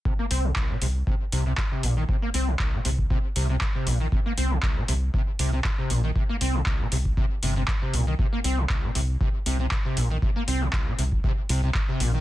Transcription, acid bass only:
X:1
M:4/4
L:1/16
Q:"Swing 16ths" 1/4=118
K:Cm
V:1 name="Acid bass" clef=bass
C, B, C C, C,, C, C, z C, z C, C, z C, B,, E, | C, B, C C, C,, C, C, z C, z C, C, z C, B,, E, | C, B, C C, C,, C, C, z C, z C, C, z C, B,, E, | C, B, C C, C,, C, C, z C, z C, C, z C, B,, E, |
C, B, C C, C,, C, C, z C, z C, C, z C, B,, E, | C, B, C C, C,, C, C, z C, z C, C, z C, B,, E, |]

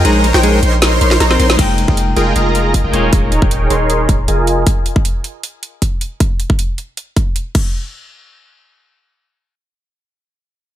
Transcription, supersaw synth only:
X:1
M:4/4
L:1/16
Q:1/4=156
K:Fm
V:1 name="Supersaw synth"
[EBcdb]3 [EBcdg]3 [EBcdc']4 [EBcdc']2 [EBcdb]2 [EBcdc']2 | [FABeg] z2 [FABeg] z2 [FABeg]2 [FABeb]4- [FABeb] [FABeg] [EABda]2 | [EABdb]3 [EABdg]3 [EABdc']4- [EABdc'] z [FABea]4 | z16 |
z16 | z16 | z16 |]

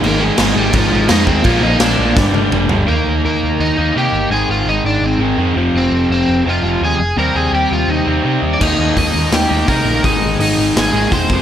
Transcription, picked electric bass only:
X:1
M:4/4
L:1/8
Q:1/4=168
K:Ablyd
V:1 name="Picked electric bass" clef=bass
A,,,2 A,,, A,,, A,,, A,,, F,, E,, | B,,, B,,, B,,, B,,, G,,, G,,, G,,, G,,, | E,, E,, E,, E,, E,, E,, C, G,,, | A,,, A,,, A,,, A,,, A,,, A,,, F,, F,,, |
F,,, F,,, F,,, F,,, F,,, F,,, E,, F,,, | E,, E,, E,, E,, E,, E,, C, E,, | E,, E,, E,, E,, E,, E,, C, B,,, | A,,, A,,, A,,, A,,, A,,, A,,, =E,,, F,,, |]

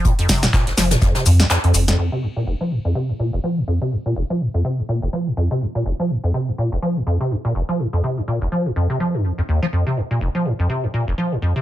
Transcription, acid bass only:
X:1
M:4/4
L:1/16
Q:"Swing 16ths" 1/4=124
K:Fm
V:1 name="Acid bass" clef=bass
A,, F,, C, F,, B,, F,,, F, A,, F,, C, F,, F,, F,, F,, F,, F,, | F,, C, F,, B,, F,,, F, A,, F,, C, F,, B,, F,,, F, A,, F,, C, | F,, B,, F,,, F, A,, F,, C, F,, B,, F,,, F, A,, F,, C, F,, B,, | F,,, F, A,, F,, C, F,, B,, F,,, F, A,, F,, C, F,, B,, F,,, F, |
A,, F,, C, F,, B,, F,,, F, A,, F,, C, F, _G,, F,, F,, E,, F, | F,, C, F,, B,, F,,, F, A,, F,, C, F,, B,, F,,, F, A,, F,, C, |]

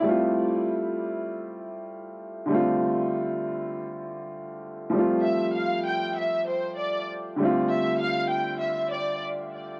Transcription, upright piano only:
X:1
M:4/4
L:1/8
Q:"Swing 16ths" 1/4=98
K:Flyd
V:1 name="Upright piano"
[G,A,CEF]8 | [D,G,A,CF]8 | [F,G,A,CF]8 | [D,G,A,CF]8 |]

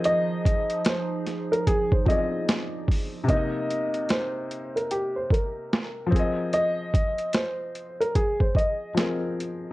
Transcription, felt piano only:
X:1
M:4/4
L:1/8
Q:"Swing 16ths" 1/4=74
K:Fdor
V:1 name="Felt piano"
[F,CAe]4- [F,CAe] [F,CAde]3 | [C,B,Ee]6- [C,B,Ee] [F,CAe]- | [F,CAe]6 [F,CAB]2 |]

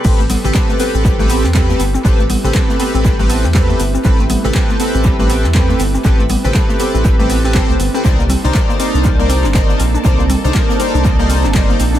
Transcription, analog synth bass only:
X:1
M:4/4
L:1/16
Q:"Swing 16ths" 1/4=120
K:Clyd
V:1 name="Analog synth bass" clef=bass
A,,,2 z A,,, z3 A,,,4 E,,2 z G,,, z | A,,,2 z A,,, z3 A,,,4 E,,2 z G,,, z | A,,,2 z A,,, z3 A,,,4 E,,2 z G,,, z | A,,,2 z A,,, z3 A,,, A,,,4 z C,, G,,, z |
C,,2 z C,, z3 C,,4 G,,,2 z _B,,, z | C,,2 z C,, z3 C,,4 G,,,2 z _B,,, z |]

